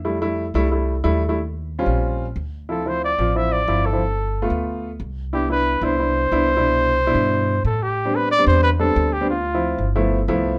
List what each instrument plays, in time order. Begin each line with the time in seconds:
Already playing: upright bass F2
0.05 upright piano G3 A3 E4
0.21 upright piano G3 A3 E4
0.54 upright bass C2, upright piano G3 A3 E4
0.71 upright piano G3 A3 E4
1.04 upright bass D#2, upright piano G3 A3 E4
1.29 upright piano G3 A3 E4
1.79 upright piano G3 C4 C#4 F4
1.86 upright bass A#1
2.36 upright bass D2
2.69 upright piano F3 C4 E4, trumpet A4
2.86 upright piano F3 C4 E4, trumpet C5
3.05 trumpet D5
3.19 upright bass A1, upright piano F3 C4 F4
3.35 upright piano F3 C4 E4, trumpet E5
3.52 trumpet D5
3.68 upright bass G1, upright piano F3 C4 E4
3.86 trumpet A4
3.93 upright piano F3 C4 E4
4.42 upright piano A3 B3 F4
4.50 upright bass D2
5.00 upright bass C2
5.33 upright piano B3 D4 E4, trumpet G4
5.50 upright piano B3 D4 E4, trumpet B4
5.82 upright bass C2, upright piano B3 D4 E4, trumpet C5
5.99 upright piano B3 D4 E4
6.32 upright bass C2, upright piano B3 D4 E4
6.57 upright piano B2 D4 E4
7.07 upright piano B2 D4 E4
7.15 upright bass G2
7.65 upright bass A2, trumpet A4
7.83 trumpet G4
8.05 upright piano G3 B3 C4 D4
8.16 trumpet B4
8.32 trumpet D5
8.38 upright piano G3 B3 C4 D4
8.47 upright bass E2, trumpet C5
8.63 trumpet B4
8.79 upright piano G3 B3 C4 D4, trumpet A4
8.96 upright bass D2
9.13 trumpet G4
9.21 upright piano G3 B3 C4 D4
9.30 trumpet F4
9.54 upright piano F3 C4 E4
9.79 upright bass G1
9.95 upright piano F3 A3 B3 E4
10.28 upright bass C2, upright piano F3 A3 B3 E4